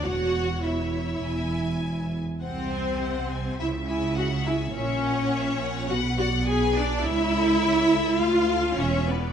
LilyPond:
<<
  \new Staff \with { instrumentName = "Violin section" } { \time 4/4 \key cis \phrygian \tempo 4 = 103 cis''4 cis''4 gis''4. r8 | fis''8 gis''8 fis''8 gis''8 e''8 gis''8 e''8 gis''8 | e''8 fis''8 e''8 fis''8 b'8 d''8 b'8 d''8 | cis''8 a'8 cis''8 a'8 f'8 a'8 e''8 d''8 | }
  \new Staff \with { instrumentName = "Violin section" } { \time 4/4 \key cis \phrygian fis''4 e''2~ e''8 r8 | bis'2 e''8 e''8 fis''8 e''8 | cis''2 fis''8 fis''8 gis''8 d''8 | e''2 f''4 cis''8 b'8 | }
  \new Staff \with { instrumentName = "Viola section" } { \time 4/4 \key cis \phrygian fis'4 e'2~ e'8 r8 | bis2 e'8 e'8 fis'8 e'8 | cis'2 fis'8 fis'8 gis'8 d'8 | e'2 f'4 cis'8 b8 | }
  \new Staff \with { instrumentName = "Cello section" } { \clef bass \time 4/4 \key cis \phrygian e,2 e,4. r8 | bis,2 cis2 | ais,2 b,2 | cis,2 d,4 e,4 | }
  \new Staff \with { instrumentName = "Double bass section" } { \clef bass \time 4/4 \key cis \phrygian e,,2 e,,4. r8 | bis,,2 cis,2 | ais,,2 b,,2 | cis,2 d,4 e,,4 | }
>>